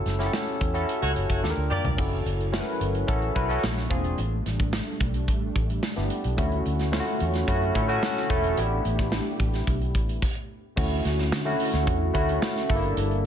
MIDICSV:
0, 0, Header, 1, 6, 480
1, 0, Start_track
1, 0, Key_signature, 2, "major"
1, 0, Tempo, 549451
1, 1732, Time_signature, 4, 2, 24, 8
1, 11584, End_track
2, 0, Start_track
2, 0, Title_t, "Horn section"
2, 0, Program_c, 0, 61
2, 890, Note_on_c, 0, 66, 82
2, 891, Note_on_c, 0, 73, 89
2, 893, Note_on_c, 0, 57, 81
2, 967, Note_off_c, 0, 66, 0
2, 968, Note_off_c, 0, 73, 0
2, 969, Note_off_c, 0, 57, 0
2, 1129, Note_on_c, 0, 57, 70
2, 1130, Note_on_c, 0, 66, 68
2, 1131, Note_on_c, 0, 73, 76
2, 1233, Note_off_c, 0, 57, 0
2, 1233, Note_off_c, 0, 66, 0
2, 1233, Note_off_c, 0, 73, 0
2, 1487, Note_on_c, 0, 58, 85
2, 1487, Note_on_c, 0, 67, 78
2, 1489, Note_on_c, 0, 74, 97
2, 1641, Note_off_c, 0, 67, 0
2, 1642, Note_off_c, 0, 58, 0
2, 1643, Note_off_c, 0, 74, 0
2, 11584, End_track
3, 0, Start_track
3, 0, Title_t, "Tine electric piano"
3, 0, Program_c, 1, 4
3, 0, Control_c, 1, 64, 127
3, 0, Note_on_c, 1, 61, 86
3, 0, Note_on_c, 1, 64, 71
3, 0, Note_on_c, 1, 66, 74
3, 0, Note_on_c, 1, 69, 89
3, 165, Note_off_c, 1, 61, 0
3, 165, Note_on_c, 1, 61, 82
3, 167, Note_off_c, 1, 64, 0
3, 167, Note_on_c, 1, 64, 74
3, 173, Note_off_c, 1, 66, 0
3, 173, Note_on_c, 1, 66, 68
3, 175, Note_on_c, 1, 67, 78
3, 230, Note_off_c, 1, 67, 0
3, 230, Note_off_c, 1, 69, 0
3, 230, Note_on_c, 1, 69, 91
3, 519, Note_off_c, 1, 61, 0
3, 520, Note_off_c, 1, 64, 0
3, 523, Note_off_c, 1, 66, 0
3, 552, Note_off_c, 1, 69, 0
3, 644, Note_on_c, 1, 61, 80
3, 647, Note_on_c, 1, 64, 74
3, 652, Note_on_c, 1, 66, 74
3, 655, Note_on_c, 1, 69, 89
3, 1087, Note_off_c, 1, 61, 0
3, 1088, Note_off_c, 1, 64, 0
3, 1091, Note_off_c, 1, 66, 0
3, 1092, Note_off_c, 1, 69, 0
3, 1243, Note_on_c, 1, 62, 74
3, 1248, Note_on_c, 1, 65, 66
3, 1253, Note_on_c, 1, 67, 70
3, 1254, Note_on_c, 1, 69, 67
3, 1265, Control_c, 1, 64, 0
3, 1310, Note_off_c, 1, 69, 0
3, 1312, Note_on_c, 1, 70, 86
3, 1415, Control_c, 1, 64, 127
3, 1599, Note_off_c, 1, 62, 0
3, 1601, Note_off_c, 1, 65, 0
3, 1604, Note_off_c, 1, 67, 0
3, 1633, Note_off_c, 1, 70, 0
3, 1725, Note_on_c, 1, 61, 77
3, 1727, Note_on_c, 1, 64, 72
3, 1731, Note_on_c, 1, 66, 69
3, 1737, Note_on_c, 1, 69, 79
3, 1744, Control_c, 1, 64, 0
3, 1877, Control_c, 1, 64, 127
3, 2079, Note_off_c, 1, 61, 0
3, 2080, Note_off_c, 1, 64, 0
3, 2082, Note_off_c, 1, 66, 0
3, 2085, Note_off_c, 1, 69, 0
3, 2203, Note_on_c, 1, 61, 77
3, 2206, Note_on_c, 1, 64, 72
3, 2211, Note_on_c, 1, 66, 68
3, 2214, Note_on_c, 1, 70, 71
3, 2268, Note_on_c, 1, 71, 85
3, 2270, Note_off_c, 1, 70, 0
3, 2559, Note_off_c, 1, 61, 0
3, 2560, Note_off_c, 1, 64, 0
3, 2563, Note_off_c, 1, 66, 0
3, 2591, Note_off_c, 1, 71, 0
3, 2685, Note_on_c, 1, 61, 83
3, 2686, Note_on_c, 1, 64, 71
3, 2692, Note_on_c, 1, 66, 75
3, 2695, Note_on_c, 1, 69, 91
3, 2864, Note_off_c, 1, 61, 0
3, 2865, Note_off_c, 1, 64, 0
3, 2868, Note_off_c, 1, 66, 0
3, 2869, Note_off_c, 1, 69, 0
3, 2927, Note_on_c, 1, 61, 81
3, 2929, Note_on_c, 1, 64, 70
3, 2934, Note_on_c, 1, 66, 66
3, 2937, Note_on_c, 1, 71, 82
3, 3018, Note_off_c, 1, 61, 0
3, 3019, Note_off_c, 1, 64, 0
3, 3021, Note_off_c, 1, 66, 0
3, 3022, Note_off_c, 1, 71, 0
3, 3049, Note_on_c, 1, 61, 89
3, 3055, Note_on_c, 1, 64, 86
3, 3057, Note_on_c, 1, 66, 80
3, 3061, Note_on_c, 1, 69, 94
3, 3171, Note_off_c, 1, 61, 0
3, 3174, Note_off_c, 1, 64, 0
3, 3175, Note_off_c, 1, 66, 0
3, 3177, Note_off_c, 1, 69, 0
3, 3182, Control_c, 1, 64, 0
3, 3348, Control_c, 1, 64, 127
3, 3405, Note_on_c, 1, 60, 85
3, 3410, Note_on_c, 1, 62, 77
3, 3413, Note_on_c, 1, 65, 84
3, 3416, Note_on_c, 1, 68, 93
3, 3649, Note_off_c, 1, 60, 0
3, 3652, Note_off_c, 1, 62, 0
3, 3653, Note_off_c, 1, 65, 0
3, 3655, Note_off_c, 1, 68, 0
3, 3666, Control_c, 1, 64, 0
3, 3792, Control_c, 1, 64, 127
3, 5206, Note_on_c, 1, 59, 76
3, 5210, Note_on_c, 1, 62, 72
3, 5213, Note_on_c, 1, 64, 68
3, 5216, Note_on_c, 1, 67, 76
3, 5473, Note_off_c, 1, 59, 0
3, 5475, Note_off_c, 1, 62, 0
3, 5476, Note_off_c, 1, 64, 0
3, 5478, Note_off_c, 1, 67, 0
3, 5565, Note_on_c, 1, 57, 79
3, 5569, Note_on_c, 1, 61, 72
3, 5570, Note_on_c, 1, 64, 74
3, 5576, Note_on_c, 1, 66, 82
3, 5586, Control_c, 1, 64, 0
3, 5740, Control_c, 1, 64, 127
3, 5920, Note_off_c, 1, 57, 0
3, 5922, Note_off_c, 1, 61, 0
3, 5922, Note_off_c, 1, 64, 0
3, 5926, Note_off_c, 1, 66, 0
3, 6044, Note_on_c, 1, 57, 81
3, 6048, Note_on_c, 1, 61, 75
3, 6052, Note_on_c, 1, 64, 71
3, 6056, Note_on_c, 1, 65, 71
3, 6111, Note_on_c, 1, 66, 88
3, 6112, Note_off_c, 1, 65, 0
3, 6399, Note_off_c, 1, 57, 0
3, 6402, Note_off_c, 1, 61, 0
3, 6403, Note_off_c, 1, 64, 0
3, 6433, Note_off_c, 1, 66, 0
3, 6528, Note_on_c, 1, 57, 87
3, 6532, Note_on_c, 1, 61, 79
3, 6537, Note_on_c, 1, 64, 80
3, 6539, Note_on_c, 1, 66, 91
3, 6706, Note_off_c, 1, 57, 0
3, 6708, Note_off_c, 1, 61, 0
3, 6710, Note_off_c, 1, 64, 0
3, 6712, Note_off_c, 1, 66, 0
3, 6766, Note_on_c, 1, 57, 86
3, 6771, Note_on_c, 1, 61, 77
3, 6772, Note_on_c, 1, 64, 74
3, 6776, Note_on_c, 1, 69, 99
3, 6858, Note_off_c, 1, 57, 0
3, 6860, Note_off_c, 1, 61, 0
3, 6860, Note_off_c, 1, 64, 0
3, 6863, Note_off_c, 1, 69, 0
3, 6885, Note_on_c, 1, 57, 90
3, 6888, Note_on_c, 1, 61, 86
3, 6891, Note_on_c, 1, 64, 85
3, 6895, Note_on_c, 1, 66, 100
3, 7152, Note_off_c, 1, 57, 0
3, 7154, Note_off_c, 1, 61, 0
3, 7155, Note_off_c, 1, 64, 0
3, 7157, Note_off_c, 1, 66, 0
3, 7246, Note_on_c, 1, 57, 98
3, 7249, Note_on_c, 1, 61, 81
3, 7253, Note_on_c, 1, 64, 80
3, 7255, Note_on_c, 1, 69, 96
3, 7481, Note_off_c, 1, 64, 0
3, 7487, Note_on_c, 1, 62, 75
3, 7488, Note_on_c, 1, 59, 84
3, 7490, Note_off_c, 1, 57, 0
3, 7491, Note_off_c, 1, 61, 0
3, 7491, Note_on_c, 1, 64, 72
3, 7494, Note_off_c, 1, 69, 0
3, 7495, Note_on_c, 1, 67, 83
3, 7504, Control_c, 1, 64, 0
3, 7667, Control_c, 1, 64, 127
3, 8258, Note_off_c, 1, 59, 0
3, 8258, Note_off_c, 1, 62, 0
3, 8260, Note_off_c, 1, 64, 0
3, 8262, Note_off_c, 1, 67, 0
3, 8946, Control_c, 1, 64, 0
3, 9402, Note_on_c, 1, 57, 77
3, 9406, Note_on_c, 1, 61, 74
3, 9409, Note_on_c, 1, 64, 68
3, 9413, Note_on_c, 1, 66, 78
3, 9581, Control_c, 1, 64, 127
3, 9845, Note_off_c, 1, 57, 0
3, 9847, Note_off_c, 1, 61, 0
3, 9849, Note_off_c, 1, 64, 0
3, 9851, Note_off_c, 1, 66, 0
3, 10002, Note_on_c, 1, 57, 84
3, 10007, Note_on_c, 1, 61, 76
3, 10008, Note_on_c, 1, 64, 81
3, 10013, Note_on_c, 1, 66, 97
3, 10445, Note_off_c, 1, 57, 0
3, 10447, Note_off_c, 1, 61, 0
3, 10448, Note_off_c, 1, 64, 0
3, 10450, Note_off_c, 1, 66, 0
3, 10600, Note_on_c, 1, 57, 87
3, 10604, Note_on_c, 1, 61, 75
3, 10607, Note_on_c, 1, 64, 76
3, 10612, Note_on_c, 1, 66, 87
3, 10956, Note_off_c, 1, 57, 0
3, 10958, Note_off_c, 1, 61, 0
3, 10960, Note_off_c, 1, 64, 0
3, 10962, Note_off_c, 1, 66, 0
3, 11082, Note_on_c, 1, 57, 68
3, 11085, Note_on_c, 1, 62, 81
3, 11089, Note_on_c, 1, 64, 78
3, 11092, Note_on_c, 1, 69, 100
3, 11101, Control_c, 1, 64, 0
3, 11138, Note_on_c, 1, 58, 90
3, 11143, Note_off_c, 1, 57, 0
3, 11241, Control_c, 1, 64, 127
3, 11567, Note_off_c, 1, 62, 0
3, 11569, Note_off_c, 1, 64, 0
3, 11571, Note_off_c, 1, 69, 0
3, 11584, Note_off_c, 1, 58, 0
3, 11584, End_track
4, 0, Start_track
4, 0, Title_t, "Analog synth pad"
4, 0, Program_c, 2, 89
4, 1731, Note_on_c, 2, 54, 81
4, 1731, Note_on_c, 2, 64, 71
4, 1732, Note_on_c, 2, 69, 88
4, 3157, Note_off_c, 2, 54, 0
4, 3158, Note_off_c, 2, 64, 0
4, 3158, Note_off_c, 2, 69, 0
4, 3172, Note_on_c, 2, 58, 65
4, 3174, Note_on_c, 2, 56, 67
4, 3174, Note_on_c, 2, 62, 82
4, 3648, Note_off_c, 2, 58, 0
4, 3649, Note_off_c, 2, 56, 0
4, 3654, Note_on_c, 2, 55, 79
4, 3656, Note_on_c, 2, 57, 77
4, 5550, Note_off_c, 2, 62, 0
4, 5555, Note_off_c, 2, 55, 0
4, 5556, Note_off_c, 2, 57, 0
4, 5570, Note_on_c, 2, 61, 73
4, 5573, Note_on_c, 2, 50, 83
4, 5574, Note_on_c, 2, 66, 85
4, 7473, Note_off_c, 2, 61, 0
4, 7474, Note_off_c, 2, 50, 0
4, 7474, Note_off_c, 2, 66, 0
4, 7496, Note_on_c, 2, 62, 76
4, 7496, Note_on_c, 2, 67, 89
4, 7497, Note_on_c, 2, 57, 88
4, 8920, Note_off_c, 2, 57, 0
4, 8920, Note_off_c, 2, 62, 0
4, 8920, Note_off_c, 2, 67, 0
4, 9405, Note_on_c, 2, 61, 77
4, 9407, Note_on_c, 2, 50, 91
4, 9407, Note_on_c, 2, 64, 82
4, 9410, Note_on_c, 2, 66, 96
4, 11071, Note_off_c, 2, 61, 0
4, 11072, Note_off_c, 2, 50, 0
4, 11073, Note_off_c, 2, 66, 0
4, 11097, Note_on_c, 2, 55, 74
4, 11101, Note_on_c, 2, 58, 75
4, 11584, Note_off_c, 2, 55, 0
4, 11584, Note_off_c, 2, 58, 0
4, 11584, Note_off_c, 2, 64, 0
4, 11584, End_track
5, 0, Start_track
5, 0, Title_t, "Fingered electric bass"
5, 0, Program_c, 3, 33
5, 48, Note_on_c, 3, 30, 88
5, 243, Note_off_c, 3, 30, 0
5, 534, Note_on_c, 3, 40, 71
5, 727, Note_off_c, 3, 40, 0
5, 895, Note_on_c, 3, 37, 77
5, 991, Note_off_c, 3, 37, 0
5, 1015, Note_on_c, 3, 30, 85
5, 1111, Note_off_c, 3, 30, 0
5, 1133, Note_on_c, 3, 30, 86
5, 1229, Note_off_c, 3, 30, 0
5, 1254, Note_on_c, 3, 39, 96
5, 1350, Note_off_c, 3, 39, 0
5, 1373, Note_on_c, 3, 38, 86
5, 1469, Note_off_c, 3, 38, 0
5, 1609, Note_on_c, 3, 36, 80
5, 1707, Note_off_c, 3, 36, 0
5, 1735, Note_on_c, 3, 30, 89
5, 1927, Note_off_c, 3, 30, 0
5, 1971, Note_on_c, 3, 30, 89
5, 2262, Note_off_c, 3, 30, 0
5, 2451, Note_on_c, 3, 31, 79
5, 2645, Note_off_c, 3, 31, 0
5, 2694, Note_on_c, 3, 33, 86
5, 2887, Note_off_c, 3, 33, 0
5, 2935, Note_on_c, 3, 35, 89
5, 3127, Note_off_c, 3, 35, 0
5, 3174, Note_on_c, 3, 34, 95
5, 3367, Note_off_c, 3, 34, 0
5, 3414, Note_on_c, 3, 28, 85
5, 3607, Note_off_c, 3, 28, 0
5, 3655, Note_on_c, 3, 33, 90
5, 3848, Note_off_c, 3, 33, 0
5, 3898, Note_on_c, 3, 33, 85
5, 4186, Note_off_c, 3, 33, 0
5, 4372, Note_on_c, 3, 35, 75
5, 4613, Note_off_c, 3, 35, 0
5, 4613, Note_on_c, 3, 33, 101
5, 4807, Note_off_c, 3, 33, 0
5, 4855, Note_on_c, 3, 33, 88
5, 5048, Note_off_c, 3, 33, 0
5, 5217, Note_on_c, 3, 31, 82
5, 5312, Note_off_c, 3, 31, 0
5, 5458, Note_on_c, 3, 35, 89
5, 5553, Note_off_c, 3, 35, 0
5, 5575, Note_on_c, 3, 38, 92
5, 5768, Note_off_c, 3, 38, 0
5, 5817, Note_on_c, 3, 38, 89
5, 6106, Note_off_c, 3, 38, 0
5, 6299, Note_on_c, 3, 40, 96
5, 6490, Note_off_c, 3, 40, 0
5, 6533, Note_on_c, 3, 42, 100
5, 6726, Note_off_c, 3, 42, 0
5, 6773, Note_on_c, 3, 45, 101
5, 6967, Note_off_c, 3, 45, 0
5, 7252, Note_on_c, 3, 28, 94
5, 7446, Note_off_c, 3, 28, 0
5, 7493, Note_on_c, 3, 33, 103
5, 7687, Note_off_c, 3, 33, 0
5, 7734, Note_on_c, 3, 33, 98
5, 8024, Note_off_c, 3, 33, 0
5, 8209, Note_on_c, 3, 33, 83
5, 8404, Note_off_c, 3, 33, 0
5, 8451, Note_on_c, 3, 35, 104
5, 8691, Note_off_c, 3, 35, 0
5, 8691, Note_on_c, 3, 33, 104
5, 8885, Note_off_c, 3, 33, 0
5, 9410, Note_on_c, 3, 38, 95
5, 9605, Note_off_c, 3, 38, 0
5, 9653, Note_on_c, 3, 38, 95
5, 9890, Note_off_c, 3, 38, 0
5, 9890, Note_on_c, 3, 50, 95
5, 10084, Note_off_c, 3, 50, 0
5, 10251, Note_on_c, 3, 38, 81
5, 10348, Note_off_c, 3, 38, 0
5, 10372, Note_on_c, 3, 40, 97
5, 10565, Note_off_c, 3, 40, 0
5, 10612, Note_on_c, 3, 38, 98
5, 10805, Note_off_c, 3, 38, 0
5, 11092, Note_on_c, 3, 31, 98
5, 11285, Note_off_c, 3, 31, 0
5, 11330, Note_on_c, 3, 31, 103
5, 11584, Note_off_c, 3, 31, 0
5, 11584, End_track
6, 0, Start_track
6, 0, Title_t, "Drums"
6, 52, Note_on_c, 9, 42, 61
6, 55, Note_on_c, 9, 38, 32
6, 139, Note_off_c, 9, 42, 0
6, 142, Note_off_c, 9, 38, 0
6, 175, Note_on_c, 9, 38, 31
6, 175, Note_on_c, 9, 42, 43
6, 262, Note_off_c, 9, 38, 0
6, 262, Note_off_c, 9, 42, 0
6, 292, Note_on_c, 9, 38, 97
6, 380, Note_off_c, 9, 38, 0
6, 417, Note_on_c, 9, 42, 30
6, 504, Note_off_c, 9, 42, 0
6, 533, Note_on_c, 9, 36, 85
6, 533, Note_on_c, 9, 42, 69
6, 620, Note_off_c, 9, 42, 0
6, 621, Note_off_c, 9, 36, 0
6, 653, Note_on_c, 9, 42, 53
6, 740, Note_off_c, 9, 42, 0
6, 779, Note_on_c, 9, 42, 75
6, 866, Note_off_c, 9, 42, 0
6, 1015, Note_on_c, 9, 42, 68
6, 1102, Note_off_c, 9, 42, 0
6, 1133, Note_on_c, 9, 36, 76
6, 1138, Note_on_c, 9, 42, 45
6, 1220, Note_off_c, 9, 36, 0
6, 1225, Note_off_c, 9, 42, 0
6, 1258, Note_on_c, 9, 38, 51
6, 1346, Note_off_c, 9, 38, 0
6, 1495, Note_on_c, 9, 45, 81
6, 1582, Note_off_c, 9, 45, 0
6, 1615, Note_on_c, 9, 43, 75
6, 1702, Note_off_c, 9, 43, 0
6, 1733, Note_on_c, 9, 36, 98
6, 1735, Note_on_c, 9, 49, 79
6, 1821, Note_off_c, 9, 36, 0
6, 1823, Note_off_c, 9, 49, 0
6, 1856, Note_on_c, 9, 42, 30
6, 1943, Note_off_c, 9, 42, 0
6, 1978, Note_on_c, 9, 42, 72
6, 2066, Note_off_c, 9, 42, 0
6, 2100, Note_on_c, 9, 42, 43
6, 2187, Note_off_c, 9, 42, 0
6, 2216, Note_on_c, 9, 38, 106
6, 2303, Note_off_c, 9, 38, 0
6, 2455, Note_on_c, 9, 42, 75
6, 2543, Note_off_c, 9, 42, 0
6, 2574, Note_on_c, 9, 42, 53
6, 2661, Note_off_c, 9, 42, 0
6, 2694, Note_on_c, 9, 36, 96
6, 2698, Note_on_c, 9, 42, 79
6, 2781, Note_off_c, 9, 36, 0
6, 2785, Note_off_c, 9, 42, 0
6, 2815, Note_on_c, 9, 42, 33
6, 2902, Note_off_c, 9, 42, 0
6, 2934, Note_on_c, 9, 36, 85
6, 2935, Note_on_c, 9, 42, 70
6, 3021, Note_off_c, 9, 36, 0
6, 3023, Note_off_c, 9, 42, 0
6, 3059, Note_on_c, 9, 42, 48
6, 3146, Note_off_c, 9, 42, 0
6, 3176, Note_on_c, 9, 38, 115
6, 3264, Note_off_c, 9, 38, 0
6, 3296, Note_on_c, 9, 38, 29
6, 3298, Note_on_c, 9, 42, 29
6, 3383, Note_off_c, 9, 38, 0
6, 3386, Note_off_c, 9, 42, 0
6, 3411, Note_on_c, 9, 42, 62
6, 3412, Note_on_c, 9, 36, 86
6, 3499, Note_off_c, 9, 42, 0
6, 3500, Note_off_c, 9, 36, 0
6, 3530, Note_on_c, 9, 42, 51
6, 3618, Note_off_c, 9, 42, 0
6, 3652, Note_on_c, 9, 42, 80
6, 3739, Note_off_c, 9, 42, 0
6, 3895, Note_on_c, 9, 42, 74
6, 3898, Note_on_c, 9, 38, 31
6, 3983, Note_off_c, 9, 42, 0
6, 3985, Note_off_c, 9, 38, 0
6, 4016, Note_on_c, 9, 36, 84
6, 4016, Note_on_c, 9, 42, 43
6, 4103, Note_off_c, 9, 36, 0
6, 4103, Note_off_c, 9, 42, 0
6, 4131, Note_on_c, 9, 38, 115
6, 4218, Note_off_c, 9, 38, 0
6, 4371, Note_on_c, 9, 42, 76
6, 4373, Note_on_c, 9, 36, 90
6, 4458, Note_off_c, 9, 42, 0
6, 4461, Note_off_c, 9, 36, 0
6, 4491, Note_on_c, 9, 42, 55
6, 4578, Note_off_c, 9, 42, 0
6, 4613, Note_on_c, 9, 36, 84
6, 4615, Note_on_c, 9, 42, 82
6, 4700, Note_off_c, 9, 36, 0
6, 4702, Note_off_c, 9, 42, 0
6, 4854, Note_on_c, 9, 36, 86
6, 4854, Note_on_c, 9, 42, 69
6, 4941, Note_off_c, 9, 36, 0
6, 4942, Note_off_c, 9, 42, 0
6, 4977, Note_on_c, 9, 42, 51
6, 5064, Note_off_c, 9, 42, 0
6, 5092, Note_on_c, 9, 38, 112
6, 5179, Note_off_c, 9, 38, 0
6, 5214, Note_on_c, 9, 38, 30
6, 5302, Note_off_c, 9, 38, 0
6, 5330, Note_on_c, 9, 42, 63
6, 5418, Note_off_c, 9, 42, 0
6, 5452, Note_on_c, 9, 42, 53
6, 5540, Note_off_c, 9, 42, 0
6, 5573, Note_on_c, 9, 42, 78
6, 5574, Note_on_c, 9, 36, 103
6, 5660, Note_off_c, 9, 42, 0
6, 5662, Note_off_c, 9, 36, 0
6, 5694, Note_on_c, 9, 42, 33
6, 5781, Note_off_c, 9, 42, 0
6, 5814, Note_on_c, 9, 42, 67
6, 5902, Note_off_c, 9, 42, 0
6, 5936, Note_on_c, 9, 38, 34
6, 5936, Note_on_c, 9, 42, 43
6, 6024, Note_off_c, 9, 38, 0
6, 6024, Note_off_c, 9, 42, 0
6, 6055, Note_on_c, 9, 38, 108
6, 6142, Note_off_c, 9, 38, 0
6, 6176, Note_on_c, 9, 42, 32
6, 6263, Note_off_c, 9, 42, 0
6, 6292, Note_on_c, 9, 42, 69
6, 6379, Note_off_c, 9, 42, 0
6, 6409, Note_on_c, 9, 42, 58
6, 6414, Note_on_c, 9, 38, 37
6, 6497, Note_off_c, 9, 42, 0
6, 6502, Note_off_c, 9, 38, 0
6, 6533, Note_on_c, 9, 36, 94
6, 6536, Note_on_c, 9, 42, 79
6, 6620, Note_off_c, 9, 36, 0
6, 6623, Note_off_c, 9, 42, 0
6, 6656, Note_on_c, 9, 42, 33
6, 6743, Note_off_c, 9, 42, 0
6, 6773, Note_on_c, 9, 36, 81
6, 6774, Note_on_c, 9, 42, 72
6, 6861, Note_off_c, 9, 36, 0
6, 6862, Note_off_c, 9, 42, 0
6, 6898, Note_on_c, 9, 42, 47
6, 6985, Note_off_c, 9, 42, 0
6, 7013, Note_on_c, 9, 38, 117
6, 7101, Note_off_c, 9, 38, 0
6, 7134, Note_on_c, 9, 38, 30
6, 7222, Note_off_c, 9, 38, 0
6, 7249, Note_on_c, 9, 42, 67
6, 7251, Note_on_c, 9, 36, 92
6, 7337, Note_off_c, 9, 42, 0
6, 7338, Note_off_c, 9, 36, 0
6, 7368, Note_on_c, 9, 42, 57
6, 7455, Note_off_c, 9, 42, 0
6, 7490, Note_on_c, 9, 42, 85
6, 7577, Note_off_c, 9, 42, 0
6, 7732, Note_on_c, 9, 42, 68
6, 7820, Note_off_c, 9, 42, 0
6, 7852, Note_on_c, 9, 38, 31
6, 7852, Note_on_c, 9, 42, 46
6, 7853, Note_on_c, 9, 36, 85
6, 7939, Note_off_c, 9, 38, 0
6, 7939, Note_off_c, 9, 42, 0
6, 7940, Note_off_c, 9, 36, 0
6, 7966, Note_on_c, 9, 38, 109
6, 8053, Note_off_c, 9, 38, 0
6, 8208, Note_on_c, 9, 42, 73
6, 8210, Note_on_c, 9, 36, 93
6, 8295, Note_off_c, 9, 42, 0
6, 8297, Note_off_c, 9, 36, 0
6, 8330, Note_on_c, 9, 42, 62
6, 8335, Note_on_c, 9, 38, 37
6, 8418, Note_off_c, 9, 42, 0
6, 8423, Note_off_c, 9, 38, 0
6, 8451, Note_on_c, 9, 36, 89
6, 8453, Note_on_c, 9, 42, 74
6, 8538, Note_off_c, 9, 36, 0
6, 8540, Note_off_c, 9, 42, 0
6, 8573, Note_on_c, 9, 42, 37
6, 8660, Note_off_c, 9, 42, 0
6, 8691, Note_on_c, 9, 36, 77
6, 8693, Note_on_c, 9, 42, 68
6, 8778, Note_off_c, 9, 36, 0
6, 8781, Note_off_c, 9, 42, 0
6, 8815, Note_on_c, 9, 42, 54
6, 8902, Note_off_c, 9, 42, 0
6, 8931, Note_on_c, 9, 36, 99
6, 8931, Note_on_c, 9, 49, 84
6, 9018, Note_off_c, 9, 36, 0
6, 9019, Note_off_c, 9, 49, 0
6, 9411, Note_on_c, 9, 36, 113
6, 9412, Note_on_c, 9, 49, 91
6, 9498, Note_off_c, 9, 36, 0
6, 9499, Note_off_c, 9, 49, 0
6, 9655, Note_on_c, 9, 42, 74
6, 9657, Note_on_c, 9, 38, 36
6, 9742, Note_off_c, 9, 42, 0
6, 9745, Note_off_c, 9, 38, 0
6, 9779, Note_on_c, 9, 38, 33
6, 9779, Note_on_c, 9, 42, 46
6, 9866, Note_off_c, 9, 38, 0
6, 9866, Note_off_c, 9, 42, 0
6, 9892, Note_on_c, 9, 38, 115
6, 9979, Note_off_c, 9, 38, 0
6, 10015, Note_on_c, 9, 42, 31
6, 10102, Note_off_c, 9, 42, 0
6, 10131, Note_on_c, 9, 46, 82
6, 10219, Note_off_c, 9, 46, 0
6, 10250, Note_on_c, 9, 42, 60
6, 10255, Note_on_c, 9, 38, 41
6, 10337, Note_off_c, 9, 42, 0
6, 10342, Note_off_c, 9, 38, 0
6, 10371, Note_on_c, 9, 36, 103
6, 10372, Note_on_c, 9, 42, 80
6, 10459, Note_off_c, 9, 36, 0
6, 10459, Note_off_c, 9, 42, 0
6, 10612, Note_on_c, 9, 36, 83
6, 10612, Note_on_c, 9, 42, 74
6, 10699, Note_off_c, 9, 36, 0
6, 10699, Note_off_c, 9, 42, 0
6, 10737, Note_on_c, 9, 42, 50
6, 10825, Note_off_c, 9, 42, 0
6, 10853, Note_on_c, 9, 38, 119
6, 10940, Note_off_c, 9, 38, 0
6, 10975, Note_on_c, 9, 38, 33
6, 10977, Note_on_c, 9, 42, 34
6, 11062, Note_off_c, 9, 38, 0
6, 11064, Note_off_c, 9, 42, 0
6, 11090, Note_on_c, 9, 46, 66
6, 11092, Note_on_c, 9, 36, 101
6, 11177, Note_off_c, 9, 46, 0
6, 11179, Note_off_c, 9, 36, 0
6, 11207, Note_on_c, 9, 42, 51
6, 11295, Note_off_c, 9, 42, 0
6, 11331, Note_on_c, 9, 42, 81
6, 11419, Note_off_c, 9, 42, 0
6, 11453, Note_on_c, 9, 42, 36
6, 11540, Note_off_c, 9, 42, 0
6, 11584, End_track
0, 0, End_of_file